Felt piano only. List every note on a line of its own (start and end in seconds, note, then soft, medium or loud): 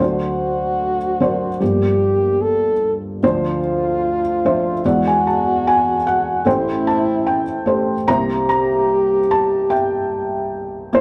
0.00 1.57 D2 soft
0.00 1.57 D3 soft
0.00 0.96 F#3 medium
0.00 0.96 D4 medium
0.00 1.59 F#4 soft
0.00 0.97 C5 medium
0.00 1.21 D5 medium
1.20 1.48 F#3 medium
1.20 1.48 D4 medium
1.20 3.20 A#4 soft
1.20 1.49 C5 medium
1.20 3.60 D5 medium
1.60 3.19 G1 soft
1.60 3.19 G2 soft
1.60 2.72 F3 medium
1.60 2.72 A#3 soft
1.60 2.73 G4 medium
3.23 4.80 D2 medium
3.23 4.80 D3 medium
3.23 4.20 F3 medium
3.23 4.20 D4 medium
3.23 4.20 C5 medium
4.45 4.72 F3 medium
4.45 4.73 D4 soft
4.45 4.73 C5 medium
4.45 4.86 E5 medium
4.85 6.42 E2 soft
4.85 6.42 E3 soft
4.85 5.96 G#3 soft
4.85 5.96 E4 soft
4.85 5.96 D5 medium
4.85 5.06 F#5 medium
5.07 5.27 G#5 medium
5.27 5.67 A5 medium
5.67 6.04 G#5 medium
6.07 6.48 F#5 medium
6.45 8.04 A1 medium
6.45 8.03 A2 medium
6.45 7.42 A3 medium
6.45 7.43 G4 medium
6.45 7.43 C5 medium
6.45 6.88 G5 medium
6.87 7.24 A5 medium
7.27 8.10 G5 medium
7.66 7.94 A3 medium
7.66 7.95 G4 medium
7.66 7.95 C5 medium
8.07 11.01 C2 soft
8.07 11.01 C3 soft
8.07 9.19 A#3 medium
8.07 9.19 E4 medium
8.07 9.19 C5 medium
8.07 9.66 E5 medium
8.07 8.48 A#5 medium
8.49 9.32 A#5 medium
9.31 9.72 A5 medium
9.70 11.01 E5 soft
9.70 10.88 G5 medium
10.93 11.01 A#3 medium
10.93 11.01 E4 medium
10.93 11.01 C5 medium